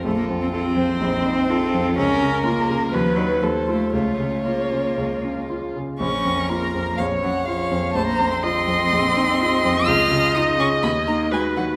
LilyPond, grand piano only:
\new Staff \with { instrumentName = "Grand piano" } { \clef bass \time 4/4 \key bes \minor \tempo 4 = 124 bes,,8 f,8 f'8 f,8 bes,,8 ees'8 f'8 f,8 | des,8 des8 f'8 des8 dis,8 <dis' b'>8 ees,8 <f' a'>8 | des,8 des8 f'8 des8 des,8 des'8 f'8 des8 | bes,,8 f,8 f'8 f,8 bes,,8 des'8 f'8 f,8 |
bes,,8 f,8 f'8 f,8 bes,,8 ees'8 f'8 f,8 | des,8 des8 f'8 des8 dis,8 dis8 fis'8 dis8 | }